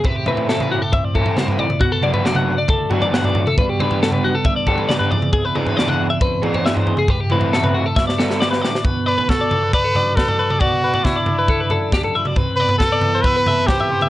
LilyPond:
<<
  \new Staff \with { instrumentName = "Clean electric guitar" } { \time 4/4 \key b \phrygian \tempo 4 = 136 b'16 g'16 b'8 a'16 b'16 fis'16 a'16 e''16 d''16 a'8 c''16 b'16 d''8 | fis'16 a'16 d''16 b'16 d''16 fis''8 d''16 a'8 fis'16 d''16 fis''16 d''8 a'16 | b'16 g'16 b'8 a'16 b'16 fis'16 a'16 e''16 d''16 a'8 d''16 b'16 d''8 | gis'16 b'16 d''16 b'16 d''16 fis''8 e''16 b'8 gis'16 c''16 e''16 c''8 gis'16 |
b'16 g'16 b'8 a'16 b'16 fis'16 a'16 e''16 d''16 a'8 d''16 b'16 d''8 | b'8 d''16 b'16 a'16 d''8 b'16 d''16 a'16 d''8 b'16 d''16 b'16 d''16 | d''8 b'16 d''16 fis'16 d''8 b'16 a'16 b'16 a'8 g'16 a'16 e''16 d''16 | b'8 d''16 b'16 a'16 d''8 c''16 e''16 b'16 e''8 c''16 e''16 c''16 e''16 | }
  \new Staff \with { instrumentName = "Trumpet" } { \time 4/4 \key b \phrygian r1 | r1 | r1 | r1 |
r1 | r8 b'8 a'4 b'4 a'4 | fis'4 e'2 r4 | r8 b'8 a'4 b'4 g'4 | }
  \new Staff \with { instrumentName = "Clean electric guitar" } { \time 4/4 \key b \phrygian << { <c' e' g'>4 e'8 g'4 e'4. | fis'4 a8 d'4 a4. | <d b d' fis'>4 b8 b16 d'8. b8 d'8 <e c' d' gis'>8~ | <e c' d' gis'>8 c'8 d'4 c'8 d'8 c'8 gis'8 |
g'2 <d b e' fis'>2 | r8 d'8 fis'4 d'8 fis'8 d'8 fis'8 | r8 d'8 d'4 d'8 d'8 d'8 e'16 fis'16 | r8 b8 b4 b8 a'8 b8 b8 | } \\ { a,8 c'4. c'4 g,8 a,8 | b,8 d4. d4 b,8 a,8 | g,8 d4. d4. e,8 | e4. e2 e,8 |
a,8 c'8 b,8 a,8 g,8 d8 g,8 a,8 | b,4. d4 fis,4. | b,4. d4 fis,4. | c4. e4 c4. | } >> }
  \new Staff \with { instrumentName = "Overdriven electric guitar" } { \time 4/4 \key b \phrygian r8 <e a c' e'>8 <e a c' e'>8 r4 <e a c' e'>8 <e a c' e'>8 r8 | r8 <fis b d' fis'>8 <fis b d' fis'>8 r4 <fis b d' fis'>8 <fis b d' fis'>8 r8 | r8 <g b d' g'>8 <g b d' g'>8 r4 <g b d' g'>8 <g b d' g'>8 r8 | r8 <e b d' gis'>8 <e b d' gis'>8 r4 <e b d' gis'>8 <e b d' gis'>8 r8 |
r8 <e a c' e'>8 <e a c' e'>8 r4 <d g b d'>8 <d g b d'>8 r8 | r1 | r1 | r1 | }
  \new Staff \with { instrumentName = "Fingered electric bass" } { \clef bass \time 4/4 \key b \phrygian r1 | r2. r8 d,8 | r2. r8 e,,8~ | e,,4. r8 e,,4. r8 |
r1 | r2 b,,4 r4 | r2 fis,4 b,4 | r8 c,8 c,4 c,4 r4 | }
  \new DrumStaff \with { instrumentName = "Drums" } \drummode { \time 4/4 <bd tomfh>8 <tomfh toml>16 tomfh16 sn16 <tomfh toml>8. <bd tomfh>8 <bd tomfh>16 tomfh16 <sn toml>16 tomfh16 tomfh16 toml16 | <bd tomfh>8 toml16 tomfh16 sn16 toml8. <bd tomfh>8 tomfh16 tomfh16 sn16 tomfh16 tomfh16 toml16 | <bd tomfh>8 <tomfh toml>16 tomfh16 sn16 <tomfh toml>8. <bd tomfh>8 <bd tomfh>16 tomfh16 <sn toml>16 tomfh16 tomfh16 toml16 | <bd tomfh>8 toml16 tomfh16 sn16 toml8. <bd tomfh>8 tomfh16 tomfh16 sn16 tomfh16 tomfh16 toml16 |
<bd tomfh>8 <tomfh toml>16 tomfh16 sn16 <tomfh toml>8. <bd sn>16 sn16 sn16 sn16 sn16 sn16 sn16 sn16 | <bd tomfh>8. tomfh16 <bd sn>8 <tomfh toml>8 bd8 <tomfh toml>8 <bd sn>16 tomfh8 toml16 | <bd tomfh>8. tomfh16 <bd sn toml>8 <tomfh toml>8 bd8 <tomfh toml>8 <bd sn>16 tomfh8 toml16 | <bd tomfh>8. tomfh16 <bd sn>8 <tomfh toml>8 bd8 <tomfh toml>8 <bd sn>16 tomfh8 toml16 | }
>>